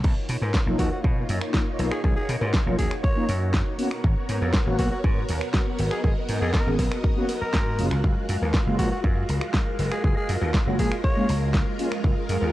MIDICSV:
0, 0, Header, 1, 7, 480
1, 0, Start_track
1, 0, Key_signature, 6, "major"
1, 0, Tempo, 500000
1, 40, Time_signature, 4, 2, 24, 8
1, 12020, End_track
2, 0, Start_track
2, 0, Title_t, "Tenor saxophone"
2, 0, Program_c, 0, 66
2, 761, Note_on_c, 0, 66, 80
2, 838, Note_off_c, 0, 66, 0
2, 886, Note_on_c, 0, 66, 73
2, 960, Note_off_c, 0, 66, 0
2, 1838, Note_on_c, 0, 68, 85
2, 1916, Note_off_c, 0, 68, 0
2, 1961, Note_on_c, 0, 68, 75
2, 2037, Note_off_c, 0, 68, 0
2, 2076, Note_on_c, 0, 68, 87
2, 2232, Note_off_c, 0, 68, 0
2, 2674, Note_on_c, 0, 68, 88
2, 2832, Note_off_c, 0, 68, 0
2, 2913, Note_on_c, 0, 73, 92
2, 3277, Note_off_c, 0, 73, 0
2, 4597, Note_on_c, 0, 66, 86
2, 4675, Note_off_c, 0, 66, 0
2, 4718, Note_on_c, 0, 66, 77
2, 4796, Note_off_c, 0, 66, 0
2, 5679, Note_on_c, 0, 68, 86
2, 5756, Note_off_c, 0, 68, 0
2, 5798, Note_on_c, 0, 68, 75
2, 5876, Note_off_c, 0, 68, 0
2, 6157, Note_on_c, 0, 68, 90
2, 6254, Note_off_c, 0, 68, 0
2, 6278, Note_on_c, 0, 70, 86
2, 6434, Note_off_c, 0, 70, 0
2, 7120, Note_on_c, 0, 70, 91
2, 7528, Note_off_c, 0, 70, 0
2, 8435, Note_on_c, 0, 66, 85
2, 8514, Note_off_c, 0, 66, 0
2, 8560, Note_on_c, 0, 66, 74
2, 8637, Note_off_c, 0, 66, 0
2, 9520, Note_on_c, 0, 68, 87
2, 9597, Note_off_c, 0, 68, 0
2, 9643, Note_on_c, 0, 68, 76
2, 9718, Note_off_c, 0, 68, 0
2, 9763, Note_on_c, 0, 68, 89
2, 9916, Note_off_c, 0, 68, 0
2, 10362, Note_on_c, 0, 68, 89
2, 10515, Note_off_c, 0, 68, 0
2, 10601, Note_on_c, 0, 73, 95
2, 10961, Note_off_c, 0, 73, 0
2, 12020, End_track
3, 0, Start_track
3, 0, Title_t, "String machine"
3, 0, Program_c, 1, 50
3, 43, Note_on_c, 1, 65, 72
3, 46, Note_on_c, 1, 58, 81
3, 46, Note_on_c, 1, 63, 76
3, 47, Note_on_c, 1, 73, 86
3, 1942, Note_off_c, 1, 65, 0
3, 1958, Note_on_c, 1, 66, 73
3, 3607, Note_off_c, 1, 58, 0
3, 3607, Note_off_c, 1, 63, 0
3, 3607, Note_off_c, 1, 73, 0
3, 3636, Note_on_c, 1, 59, 83
3, 3637, Note_on_c, 1, 70, 77
3, 3637, Note_on_c, 1, 73, 93
3, 5539, Note_off_c, 1, 73, 0
3, 5562, Note_on_c, 1, 75, 91
3, 7440, Note_off_c, 1, 59, 0
3, 7440, Note_off_c, 1, 70, 0
3, 7462, Note_off_c, 1, 75, 0
3, 7477, Note_on_c, 1, 65, 74
3, 7478, Note_on_c, 1, 70, 93
3, 7479, Note_on_c, 1, 56, 85
3, 11281, Note_off_c, 1, 66, 0
3, 11319, Note_on_c, 1, 68, 80
3, 12020, Note_off_c, 1, 56, 0
3, 12020, Note_off_c, 1, 65, 0
3, 12020, Note_off_c, 1, 68, 0
3, 12020, Note_off_c, 1, 70, 0
3, 12020, End_track
4, 0, Start_track
4, 0, Title_t, "Analog polysynth"
4, 0, Program_c, 2, 90
4, 634, Note_on_c, 2, 53, 93
4, 637, Note_on_c, 2, 58, 82
4, 640, Note_on_c, 2, 61, 85
4, 645, Note_on_c, 2, 63, 103
4, 728, Note_off_c, 2, 53, 0
4, 730, Note_off_c, 2, 58, 0
4, 731, Note_off_c, 2, 61, 0
4, 734, Note_off_c, 2, 63, 0
4, 753, Note_on_c, 2, 53, 87
4, 754, Note_on_c, 2, 58, 83
4, 757, Note_on_c, 2, 61, 82
4, 762, Note_on_c, 2, 63, 99
4, 838, Note_off_c, 2, 53, 0
4, 839, Note_off_c, 2, 58, 0
4, 840, Note_off_c, 2, 61, 0
4, 843, Note_off_c, 2, 63, 0
4, 2552, Note_on_c, 2, 53, 92
4, 2556, Note_on_c, 2, 58, 88
4, 2558, Note_on_c, 2, 61, 89
4, 2563, Note_on_c, 2, 65, 104
4, 2638, Note_off_c, 2, 53, 0
4, 2640, Note_off_c, 2, 58, 0
4, 2641, Note_off_c, 2, 61, 0
4, 2643, Note_off_c, 2, 65, 0
4, 2672, Note_on_c, 2, 53, 75
4, 2682, Note_on_c, 2, 66, 83
4, 2758, Note_off_c, 2, 53, 0
4, 2763, Note_off_c, 2, 66, 0
4, 3028, Note_on_c, 2, 53, 97
4, 3032, Note_on_c, 2, 58, 87
4, 3035, Note_on_c, 2, 61, 84
4, 3040, Note_on_c, 2, 63, 108
4, 3115, Note_off_c, 2, 53, 0
4, 3118, Note_off_c, 2, 58, 0
4, 3119, Note_off_c, 2, 61, 0
4, 3121, Note_off_c, 2, 63, 0
4, 3629, Note_on_c, 2, 58, 91
4, 3632, Note_on_c, 2, 59, 81
4, 3634, Note_on_c, 2, 61, 83
4, 3638, Note_on_c, 2, 66, 100
4, 3716, Note_off_c, 2, 58, 0
4, 3718, Note_off_c, 2, 59, 0
4, 3719, Note_off_c, 2, 61, 0
4, 3721, Note_off_c, 2, 66, 0
4, 4471, Note_on_c, 2, 58, 89
4, 4474, Note_on_c, 2, 59, 83
4, 4478, Note_on_c, 2, 61, 80
4, 4481, Note_on_c, 2, 66, 101
4, 4567, Note_off_c, 2, 58, 0
4, 4568, Note_off_c, 2, 59, 0
4, 4570, Note_off_c, 2, 61, 0
4, 4572, Note_off_c, 2, 66, 0
4, 4596, Note_on_c, 2, 58, 92
4, 4597, Note_on_c, 2, 59, 82
4, 4600, Note_on_c, 2, 61, 82
4, 4604, Note_on_c, 2, 66, 97
4, 4680, Note_off_c, 2, 58, 0
4, 4680, Note_off_c, 2, 59, 0
4, 4682, Note_off_c, 2, 61, 0
4, 4684, Note_off_c, 2, 66, 0
4, 6393, Note_on_c, 2, 58, 94
4, 6395, Note_on_c, 2, 59, 84
4, 6398, Note_on_c, 2, 61, 86
4, 6403, Note_on_c, 2, 68, 109
4, 6478, Note_off_c, 2, 58, 0
4, 6479, Note_off_c, 2, 59, 0
4, 6481, Note_off_c, 2, 61, 0
4, 6483, Note_off_c, 2, 68, 0
4, 6515, Note_on_c, 2, 58, 73
4, 6518, Note_on_c, 2, 59, 70
4, 6521, Note_on_c, 2, 61, 68
4, 6524, Note_on_c, 2, 70, 80
4, 6599, Note_off_c, 2, 58, 0
4, 6601, Note_off_c, 2, 59, 0
4, 6602, Note_off_c, 2, 61, 0
4, 6604, Note_off_c, 2, 70, 0
4, 6876, Note_on_c, 2, 58, 94
4, 6878, Note_on_c, 2, 59, 89
4, 6882, Note_on_c, 2, 61, 88
4, 6884, Note_on_c, 2, 66, 104
4, 6959, Note_off_c, 2, 58, 0
4, 6960, Note_off_c, 2, 59, 0
4, 6963, Note_off_c, 2, 61, 0
4, 6964, Note_off_c, 2, 66, 0
4, 7472, Note_on_c, 2, 56, 88
4, 7476, Note_on_c, 2, 58, 80
4, 7477, Note_on_c, 2, 61, 81
4, 7481, Note_on_c, 2, 65, 100
4, 7558, Note_off_c, 2, 56, 0
4, 7560, Note_off_c, 2, 58, 0
4, 7560, Note_off_c, 2, 61, 0
4, 7562, Note_off_c, 2, 65, 0
4, 8312, Note_on_c, 2, 56, 88
4, 8316, Note_on_c, 2, 58, 82
4, 8320, Note_on_c, 2, 61, 81
4, 8323, Note_on_c, 2, 65, 102
4, 8407, Note_off_c, 2, 56, 0
4, 8409, Note_off_c, 2, 58, 0
4, 8411, Note_off_c, 2, 61, 0
4, 8413, Note_off_c, 2, 65, 0
4, 8432, Note_on_c, 2, 56, 87
4, 8435, Note_on_c, 2, 58, 82
4, 8439, Note_on_c, 2, 61, 82
4, 8442, Note_on_c, 2, 65, 100
4, 8518, Note_off_c, 2, 56, 0
4, 8519, Note_off_c, 2, 58, 0
4, 8521, Note_off_c, 2, 61, 0
4, 8523, Note_off_c, 2, 65, 0
4, 10233, Note_on_c, 2, 56, 98
4, 10236, Note_on_c, 2, 58, 84
4, 10239, Note_on_c, 2, 61, 88
4, 10242, Note_on_c, 2, 66, 101
4, 10318, Note_off_c, 2, 56, 0
4, 10320, Note_off_c, 2, 58, 0
4, 10321, Note_off_c, 2, 61, 0
4, 10323, Note_off_c, 2, 66, 0
4, 10357, Note_on_c, 2, 56, 76
4, 10360, Note_on_c, 2, 58, 71
4, 10363, Note_on_c, 2, 61, 67
4, 10367, Note_on_c, 2, 68, 83
4, 10440, Note_off_c, 2, 56, 0
4, 10442, Note_off_c, 2, 58, 0
4, 10443, Note_off_c, 2, 61, 0
4, 10445, Note_off_c, 2, 68, 0
4, 10717, Note_on_c, 2, 56, 99
4, 10721, Note_on_c, 2, 58, 87
4, 10723, Note_on_c, 2, 61, 84
4, 10728, Note_on_c, 2, 65, 104
4, 10800, Note_off_c, 2, 56, 0
4, 10802, Note_off_c, 2, 58, 0
4, 10803, Note_off_c, 2, 61, 0
4, 10805, Note_off_c, 2, 65, 0
4, 11314, Note_on_c, 2, 56, 95
4, 11317, Note_on_c, 2, 58, 83
4, 11322, Note_on_c, 2, 61, 84
4, 11324, Note_on_c, 2, 65, 99
4, 11399, Note_off_c, 2, 56, 0
4, 11400, Note_off_c, 2, 58, 0
4, 11403, Note_off_c, 2, 61, 0
4, 11404, Note_off_c, 2, 65, 0
4, 12020, End_track
5, 0, Start_track
5, 0, Title_t, "Slap bass"
5, 0, Program_c, 3, 36
5, 41, Note_on_c, 3, 35, 98
5, 130, Note_off_c, 3, 35, 0
5, 279, Note_on_c, 3, 47, 81
5, 369, Note_off_c, 3, 47, 0
5, 399, Note_on_c, 3, 44, 96
5, 488, Note_off_c, 3, 44, 0
5, 638, Note_on_c, 3, 35, 97
5, 727, Note_off_c, 3, 35, 0
5, 761, Note_on_c, 3, 39, 84
5, 850, Note_off_c, 3, 39, 0
5, 1001, Note_on_c, 3, 47, 91
5, 1178, Note_off_c, 3, 47, 0
5, 1240, Note_on_c, 3, 42, 98
5, 1329, Note_off_c, 3, 42, 0
5, 1720, Note_on_c, 3, 35, 82
5, 1809, Note_off_c, 3, 35, 0
5, 1959, Note_on_c, 3, 35, 98
5, 2048, Note_off_c, 3, 35, 0
5, 2198, Note_on_c, 3, 47, 82
5, 2288, Note_off_c, 3, 47, 0
5, 2316, Note_on_c, 3, 44, 100
5, 2407, Note_off_c, 3, 44, 0
5, 2558, Note_on_c, 3, 35, 99
5, 2647, Note_off_c, 3, 35, 0
5, 2678, Note_on_c, 3, 39, 82
5, 2768, Note_off_c, 3, 39, 0
5, 3157, Note_on_c, 3, 42, 87
5, 3469, Note_off_c, 3, 42, 0
5, 3880, Note_on_c, 3, 32, 100
5, 3969, Note_off_c, 3, 32, 0
5, 4118, Note_on_c, 3, 44, 85
5, 4208, Note_off_c, 3, 44, 0
5, 4240, Note_on_c, 3, 41, 97
5, 4328, Note_off_c, 3, 41, 0
5, 4481, Note_on_c, 3, 32, 106
5, 4569, Note_off_c, 3, 32, 0
5, 4599, Note_on_c, 3, 35, 84
5, 4688, Note_off_c, 3, 35, 0
5, 4839, Note_on_c, 3, 44, 96
5, 5017, Note_off_c, 3, 44, 0
5, 5082, Note_on_c, 3, 39, 95
5, 5170, Note_off_c, 3, 39, 0
5, 5561, Note_on_c, 3, 32, 80
5, 5649, Note_off_c, 3, 32, 0
5, 5799, Note_on_c, 3, 32, 95
5, 5889, Note_off_c, 3, 32, 0
5, 6038, Note_on_c, 3, 44, 80
5, 6128, Note_off_c, 3, 44, 0
5, 6158, Note_on_c, 3, 41, 97
5, 6248, Note_off_c, 3, 41, 0
5, 6401, Note_on_c, 3, 32, 100
5, 6489, Note_off_c, 3, 32, 0
5, 6518, Note_on_c, 3, 35, 83
5, 6608, Note_off_c, 3, 35, 0
5, 7239, Note_on_c, 3, 44, 89
5, 7481, Note_on_c, 3, 30, 79
5, 7496, Note_off_c, 3, 44, 0
5, 7570, Note_off_c, 3, 30, 0
5, 7602, Note_on_c, 3, 37, 76
5, 7690, Note_off_c, 3, 37, 0
5, 7717, Note_on_c, 3, 30, 101
5, 7808, Note_off_c, 3, 30, 0
5, 7958, Note_on_c, 3, 42, 84
5, 8048, Note_off_c, 3, 42, 0
5, 8081, Note_on_c, 3, 39, 94
5, 8169, Note_off_c, 3, 39, 0
5, 8319, Note_on_c, 3, 30, 103
5, 8408, Note_off_c, 3, 30, 0
5, 8438, Note_on_c, 3, 34, 82
5, 8528, Note_off_c, 3, 34, 0
5, 8678, Note_on_c, 3, 42, 92
5, 8857, Note_off_c, 3, 42, 0
5, 8921, Note_on_c, 3, 37, 95
5, 9010, Note_off_c, 3, 37, 0
5, 9397, Note_on_c, 3, 30, 79
5, 9488, Note_off_c, 3, 30, 0
5, 9640, Note_on_c, 3, 30, 97
5, 9729, Note_off_c, 3, 30, 0
5, 9880, Note_on_c, 3, 42, 82
5, 9969, Note_off_c, 3, 42, 0
5, 9999, Note_on_c, 3, 39, 100
5, 10088, Note_off_c, 3, 39, 0
5, 10242, Note_on_c, 3, 30, 103
5, 10330, Note_off_c, 3, 30, 0
5, 10360, Note_on_c, 3, 34, 85
5, 10449, Note_off_c, 3, 34, 0
5, 10842, Note_on_c, 3, 37, 87
5, 11151, Note_off_c, 3, 37, 0
5, 11560, Note_on_c, 3, 30, 100
5, 11649, Note_off_c, 3, 30, 0
5, 11800, Note_on_c, 3, 42, 80
5, 11889, Note_off_c, 3, 42, 0
5, 11922, Note_on_c, 3, 39, 99
5, 12010, Note_off_c, 3, 39, 0
5, 12020, End_track
6, 0, Start_track
6, 0, Title_t, "Muted slap bass strokes"
6, 7121, Note_on_c, 9, 29, 42
6, 7217, Note_off_c, 9, 29, 0
6, 12020, End_track
7, 0, Start_track
7, 0, Title_t, "Drums"
7, 38, Note_on_c, 9, 49, 72
7, 41, Note_on_c, 9, 36, 114
7, 134, Note_off_c, 9, 49, 0
7, 137, Note_off_c, 9, 36, 0
7, 277, Note_on_c, 9, 46, 103
7, 373, Note_off_c, 9, 46, 0
7, 413, Note_on_c, 9, 56, 73
7, 509, Note_off_c, 9, 56, 0
7, 517, Note_on_c, 9, 38, 120
7, 521, Note_on_c, 9, 36, 114
7, 613, Note_off_c, 9, 38, 0
7, 617, Note_off_c, 9, 36, 0
7, 751, Note_on_c, 9, 56, 60
7, 759, Note_on_c, 9, 46, 101
7, 760, Note_on_c, 9, 36, 59
7, 847, Note_off_c, 9, 56, 0
7, 855, Note_off_c, 9, 46, 0
7, 856, Note_off_c, 9, 36, 0
7, 1001, Note_on_c, 9, 36, 115
7, 1097, Note_off_c, 9, 36, 0
7, 1238, Note_on_c, 9, 46, 100
7, 1334, Note_off_c, 9, 46, 0
7, 1358, Note_on_c, 9, 26, 84
7, 1454, Note_off_c, 9, 26, 0
7, 1477, Note_on_c, 9, 38, 118
7, 1479, Note_on_c, 9, 36, 112
7, 1573, Note_off_c, 9, 38, 0
7, 1575, Note_off_c, 9, 36, 0
7, 1718, Note_on_c, 9, 46, 103
7, 1720, Note_on_c, 9, 56, 55
7, 1814, Note_off_c, 9, 46, 0
7, 1816, Note_off_c, 9, 56, 0
7, 1838, Note_on_c, 9, 26, 70
7, 1934, Note_off_c, 9, 26, 0
7, 1958, Note_on_c, 9, 36, 119
7, 2054, Note_off_c, 9, 36, 0
7, 2198, Note_on_c, 9, 46, 105
7, 2294, Note_off_c, 9, 46, 0
7, 2316, Note_on_c, 9, 56, 81
7, 2412, Note_off_c, 9, 56, 0
7, 2435, Note_on_c, 9, 38, 122
7, 2438, Note_on_c, 9, 36, 119
7, 2531, Note_off_c, 9, 38, 0
7, 2534, Note_off_c, 9, 36, 0
7, 2675, Note_on_c, 9, 46, 102
7, 2678, Note_on_c, 9, 36, 61
7, 2771, Note_off_c, 9, 46, 0
7, 2774, Note_off_c, 9, 36, 0
7, 2796, Note_on_c, 9, 26, 77
7, 2892, Note_off_c, 9, 26, 0
7, 2918, Note_on_c, 9, 36, 122
7, 3014, Note_off_c, 9, 36, 0
7, 3156, Note_on_c, 9, 46, 99
7, 3252, Note_off_c, 9, 46, 0
7, 3395, Note_on_c, 9, 38, 115
7, 3398, Note_on_c, 9, 36, 118
7, 3491, Note_off_c, 9, 38, 0
7, 3494, Note_off_c, 9, 36, 0
7, 3636, Note_on_c, 9, 46, 105
7, 3732, Note_off_c, 9, 46, 0
7, 3756, Note_on_c, 9, 26, 69
7, 3852, Note_off_c, 9, 26, 0
7, 3878, Note_on_c, 9, 36, 117
7, 3974, Note_off_c, 9, 36, 0
7, 4118, Note_on_c, 9, 46, 104
7, 4214, Note_off_c, 9, 46, 0
7, 4243, Note_on_c, 9, 56, 77
7, 4339, Note_off_c, 9, 56, 0
7, 4353, Note_on_c, 9, 38, 121
7, 4359, Note_on_c, 9, 36, 121
7, 4449, Note_off_c, 9, 38, 0
7, 4455, Note_off_c, 9, 36, 0
7, 4595, Note_on_c, 9, 46, 100
7, 4599, Note_on_c, 9, 36, 62
7, 4603, Note_on_c, 9, 56, 64
7, 4691, Note_off_c, 9, 46, 0
7, 4695, Note_off_c, 9, 36, 0
7, 4699, Note_off_c, 9, 56, 0
7, 4839, Note_on_c, 9, 36, 121
7, 4935, Note_off_c, 9, 36, 0
7, 5075, Note_on_c, 9, 46, 103
7, 5171, Note_off_c, 9, 46, 0
7, 5196, Note_on_c, 9, 26, 81
7, 5292, Note_off_c, 9, 26, 0
7, 5316, Note_on_c, 9, 38, 118
7, 5319, Note_on_c, 9, 36, 122
7, 5412, Note_off_c, 9, 38, 0
7, 5415, Note_off_c, 9, 36, 0
7, 5556, Note_on_c, 9, 46, 106
7, 5564, Note_on_c, 9, 56, 62
7, 5652, Note_off_c, 9, 46, 0
7, 5660, Note_off_c, 9, 56, 0
7, 5676, Note_on_c, 9, 26, 70
7, 5772, Note_off_c, 9, 26, 0
7, 5799, Note_on_c, 9, 36, 113
7, 5895, Note_off_c, 9, 36, 0
7, 6035, Note_on_c, 9, 46, 104
7, 6131, Note_off_c, 9, 46, 0
7, 6163, Note_on_c, 9, 56, 84
7, 6259, Note_off_c, 9, 56, 0
7, 6274, Note_on_c, 9, 38, 113
7, 6278, Note_on_c, 9, 36, 122
7, 6370, Note_off_c, 9, 38, 0
7, 6374, Note_off_c, 9, 36, 0
7, 6515, Note_on_c, 9, 56, 64
7, 6516, Note_on_c, 9, 46, 103
7, 6518, Note_on_c, 9, 36, 63
7, 6611, Note_off_c, 9, 56, 0
7, 6612, Note_off_c, 9, 46, 0
7, 6614, Note_off_c, 9, 36, 0
7, 6638, Note_on_c, 9, 26, 78
7, 6734, Note_off_c, 9, 26, 0
7, 6758, Note_on_c, 9, 36, 118
7, 6854, Note_off_c, 9, 36, 0
7, 6996, Note_on_c, 9, 46, 105
7, 6999, Note_on_c, 9, 56, 59
7, 7092, Note_off_c, 9, 46, 0
7, 7095, Note_off_c, 9, 56, 0
7, 7234, Note_on_c, 9, 38, 116
7, 7238, Note_on_c, 9, 36, 120
7, 7330, Note_off_c, 9, 38, 0
7, 7334, Note_off_c, 9, 36, 0
7, 7475, Note_on_c, 9, 46, 103
7, 7571, Note_off_c, 9, 46, 0
7, 7595, Note_on_c, 9, 26, 69
7, 7691, Note_off_c, 9, 26, 0
7, 7718, Note_on_c, 9, 36, 111
7, 7814, Note_off_c, 9, 36, 0
7, 7956, Note_on_c, 9, 46, 102
7, 8052, Note_off_c, 9, 46, 0
7, 8087, Note_on_c, 9, 56, 73
7, 8183, Note_off_c, 9, 56, 0
7, 8195, Note_on_c, 9, 38, 111
7, 8198, Note_on_c, 9, 36, 117
7, 8291, Note_off_c, 9, 38, 0
7, 8294, Note_off_c, 9, 36, 0
7, 8437, Note_on_c, 9, 46, 100
7, 8438, Note_on_c, 9, 36, 58
7, 8438, Note_on_c, 9, 56, 61
7, 8533, Note_off_c, 9, 46, 0
7, 8534, Note_off_c, 9, 36, 0
7, 8534, Note_off_c, 9, 56, 0
7, 8678, Note_on_c, 9, 36, 111
7, 8774, Note_off_c, 9, 36, 0
7, 8917, Note_on_c, 9, 46, 101
7, 9013, Note_off_c, 9, 46, 0
7, 9037, Note_on_c, 9, 26, 82
7, 9133, Note_off_c, 9, 26, 0
7, 9156, Note_on_c, 9, 38, 111
7, 9159, Note_on_c, 9, 36, 112
7, 9252, Note_off_c, 9, 38, 0
7, 9255, Note_off_c, 9, 36, 0
7, 9398, Note_on_c, 9, 46, 99
7, 9406, Note_on_c, 9, 56, 56
7, 9494, Note_off_c, 9, 46, 0
7, 9502, Note_off_c, 9, 56, 0
7, 9519, Note_on_c, 9, 26, 73
7, 9615, Note_off_c, 9, 26, 0
7, 9639, Note_on_c, 9, 36, 110
7, 9735, Note_off_c, 9, 36, 0
7, 9879, Note_on_c, 9, 46, 98
7, 9975, Note_off_c, 9, 46, 0
7, 9998, Note_on_c, 9, 56, 75
7, 10094, Note_off_c, 9, 56, 0
7, 10118, Note_on_c, 9, 38, 108
7, 10119, Note_on_c, 9, 36, 114
7, 10214, Note_off_c, 9, 38, 0
7, 10215, Note_off_c, 9, 36, 0
7, 10359, Note_on_c, 9, 36, 59
7, 10359, Note_on_c, 9, 46, 94
7, 10455, Note_off_c, 9, 36, 0
7, 10455, Note_off_c, 9, 46, 0
7, 10480, Note_on_c, 9, 26, 86
7, 10576, Note_off_c, 9, 26, 0
7, 10599, Note_on_c, 9, 36, 111
7, 10695, Note_off_c, 9, 36, 0
7, 10839, Note_on_c, 9, 46, 98
7, 10935, Note_off_c, 9, 46, 0
7, 11078, Note_on_c, 9, 38, 112
7, 11079, Note_on_c, 9, 36, 112
7, 11174, Note_off_c, 9, 38, 0
7, 11175, Note_off_c, 9, 36, 0
7, 11320, Note_on_c, 9, 46, 100
7, 11416, Note_off_c, 9, 46, 0
7, 11440, Note_on_c, 9, 26, 80
7, 11536, Note_off_c, 9, 26, 0
7, 11560, Note_on_c, 9, 36, 107
7, 11656, Note_off_c, 9, 36, 0
7, 11800, Note_on_c, 9, 46, 98
7, 11896, Note_off_c, 9, 46, 0
7, 11914, Note_on_c, 9, 56, 68
7, 12010, Note_off_c, 9, 56, 0
7, 12020, End_track
0, 0, End_of_file